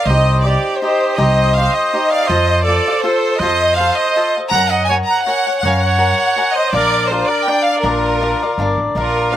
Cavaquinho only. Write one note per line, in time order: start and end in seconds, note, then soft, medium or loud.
0.09 0.45 D#4 medium
0.09 0.46 G4 medium
0.09 0.46 C5 medium
0.09 0.46 D#5 medium
0.47 0.81 D#4 medium
0.47 0.81 G4 medium
0.47 0.83 C5 medium
0.82 1.17 D#4 medium
0.82 1.17 G4 medium
0.82 1.18 C5 medium
0.82 1.17 D#5 medium
1.18 1.55 D#4 medium
1.18 1.56 G4 medium
1.18 1.57 C5 medium
1.18 1.56 D#5 medium
1.57 1.92 D#4 soft
1.57 1.93 G4 medium
1.57 1.94 C5 medium
1.57 1.94 D#5 medium
1.93 2.29 D#4 medium
1.93 2.29 G4 medium
1.93 2.30 C5 medium
1.93 2.31 D#5 medium
2.30 2.67 F4 medium
2.30 2.67 A4 medium
2.30 2.67 C5 medium
2.30 2.67 F5 medium
2.68 2.87 F4 soft
2.68 2.88 A4 medium
2.68 2.88 C5 medium
2.68 2.87 F5 medium
2.88 3.02 A4 soft
2.88 3.03 C5 soft
2.88 3.04 F5 soft
3.03 3.40 F4 medium
3.03 3.41 A4 medium
3.03 3.41 C5 medium
3.03 3.41 F5 medium
3.41 3.77 F4 medium
3.41 3.79 A4 medium
3.41 3.79 C5 medium
3.41 3.79 F5 medium
3.79 4.15 F4 soft
3.79 4.15 A4 medium
3.79 4.17 C5 medium
3.79 4.16 F5 medium
4.16 4.36 F4 medium
4.16 4.36 A4 medium
4.16 4.37 C5 medium
4.16 4.35 F5 medium
4.37 4.54 A4 soft
4.37 4.54 C5 soft
4.37 4.54 F5 soft
4.53 4.89 A#4 medium
4.53 4.89 C#5 medium
4.53 4.89 F#5 medium
4.53 4.90 G#5 medium
4.89 5.26 A#4 soft
4.89 5.26 C#5 medium
4.89 5.28 F#5 medium
4.89 5.27 G#5 medium
5.26 5.47 A#4 medium
5.26 5.47 C#5 medium
5.26 5.46 F#5 medium
5.26 5.46 G#5 medium
5.47 5.64 C#5 soft
5.47 5.64 F#5 soft
5.47 5.64 G#5 soft
5.65 5.98 A#4 medium
5.65 5.98 C#5 medium
5.65 5.99 F#5 medium
5.65 5.99 G#5 medium
5.98 6.36 A#4 medium
5.98 6.36 C#5 medium
5.98 6.36 F#5 medium
5.98 6.36 G#5 medium
6.36 6.72 A#4 medium
6.36 6.72 C#5 medium
6.36 6.74 F#5 medium
6.36 6.73 G#5 medium
6.73 7.11 D4 medium
6.73 7.12 A#4 medium
6.73 7.12 D5 medium
6.73 7.11 F5 medium
7.11 7.47 D4 medium
7.11 7.48 A#4 medium
7.11 7.48 D5 medium
7.11 7.49 F5 medium
7.48 7.83 D4 medium
7.48 7.84 A#4 medium
7.48 7.85 D5 medium
7.48 7.84 F5 medium
7.83 8.20 D4 medium
7.83 8.21 A#4 medium
7.83 8.22 D5 medium
7.83 8.22 F5 medium
8.21 8.41 D4 soft
8.21 8.42 A#4 medium
8.21 8.41 D5 medium
8.21 8.41 F5 medium
8.42 8.58 A#4 soft
8.42 8.59 D5 soft
8.42 8.59 F5 soft
8.59 8.96 D4 medium
8.59 8.95 A#4 medium
8.59 8.97 D5 medium
8.59 8.97 F5 medium
8.96 9.31 D4 medium
8.96 9.33 A#4 medium
8.96 9.33 D5 medium
8.96 9.32 F5 medium
9.32 9.37 D4 medium
9.32 9.37 A#4 medium
9.32 9.37 F5 medium